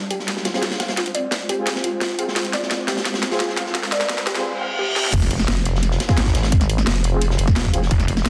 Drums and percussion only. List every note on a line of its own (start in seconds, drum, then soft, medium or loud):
0.10 closed hi-hat medium
0.20 snare soft
0.28 snare medium
0.28 closed hi-hat medium
0.37 snare medium
0.45 snare loud
0.45 closed hi-hat medium
0.54 snare loud
0.54 closed hi-hat medium
0.62 snare loud
0.62 snare medium
0.62 closed hi-hat medium
0.71 snare loud
0.71 closed hi-hat medium
0.80 snare loud
0.80 closed hi-hat medium
0.88 snare loud
0.88 closed hi-hat medium
0.97 snare medium
0.97 closed hi-hat loud
0.97 closed hi-hat medium
1.06 closed hi-hat soft
1.15 closed hi-hat medium
1.31 snare loud
1.31 snare medium
1.31 closed hi-hat medium
1.49 closed hi-hat medium
1.67 snare medium
1.67 closed hi-hat medium
1.75 snare soft
1.84 closed hi-hat medium
2.01 snare medium
2.01 snare loud
2.01 closed hi-hat medium
2.19 closed hi-hat medium
2.28 snare medium
2.36 snare medium
2.36 closed hi-hat medium
2.45 closed hi-hat soft
2.53 snare medium
2.53 closed hi-hat medium
2.63 snare soft
2.70 snare medium
2.70 snare loud
2.70 closed hi-hat medium
2.87 snare loud
2.87 snare medium
2.87 closed hi-hat medium
2.97 snare loud
2.97 closed hi-hat medium
3.05 snare loud
3.05 snare medium
3.05 closed hi-hat medium
3.14 snare loud
3.14 closed hi-hat medium
3.23 snare medium
3.23 snare loud
3.23 closed hi-hat medium
3.31 snare loud
3.31 closed hi-hat medium
3.40 snare medium
3.40 snare loud
3.40 closed hi-hat loud
3.40 closed hi-hat medium
3.49 snare medium
3.57 snare medium
3.57 closed hi-hat medium
3.66 snare soft
3.75 snare loud
3.75 closed hi-hat medium
3.83 snare medium
3.83 closed hi-hat soft
3.92 snare loud
3.92 closed hi-hat medium
4.01 snare medium
4.09 snare loud
4.09 closed hi-hat medium
4.18 snare medium
4.27 snare loud
4.27 closed hi-hat medium
4.35 snare medium
4.96 snare medium
5.05 snare medium
5.13 kick loud
5.13 closed hi-hat medium
5.13 closed hi-hat loud
5.13 crash loud
5.22 snare soft
5.22 closed hi-hat soft
5.31 closed hi-hat medium
5.39 snare soft
5.39 snare medium
5.48 snare loud
5.48 closed hi-hat loud
5.48 closed hi-hat medium
5.65 closed hi-hat medium
5.75 snare soft
5.83 snare soft
5.83 closed hi-hat medium
5.83 closed hi-hat loud
5.91 snare medium
6.00 snare loud
6.00 closed hi-hat medium
6.09 kick loud
6.09 snare loud
6.09 snare soft
6.09 closed hi-hat medium
6.17 snare loud
6.17 closed hi-hat medium
6.26 kick medium
6.26 snare loud
6.26 closed hi-hat medium
6.34 snare medium
6.34 closed hi-hat medium
6.43 snare loud
6.43 closed hi-hat medium
6.52 kick loud
6.52 closed hi-hat medium
6.52 closed hi-hat loud
6.61 snare soft
6.61 closed hi-hat soft
6.70 closed hi-hat medium
6.78 snare medium
6.86 snare loud
6.86 closed hi-hat medium
6.86 closed hi-hat loud
7.04 closed hi-hat medium
7.22 closed hi-hat medium
7.30 snare medium
7.38 closed hi-hat medium
7.48 kick loud
7.48 snare soft
7.56 snare loud
7.56 closed hi-hat medium
7.65 kick medium
7.73 closed hi-hat medium
7.82 snare soft
7.91 kick loud
7.91 closed hi-hat medium
8.00 snare soft
8.00 closed hi-hat soft
8.08 closed hi-hat medium
8.17 snare soft
8.25 snare loud
8.25 closed hi-hat medium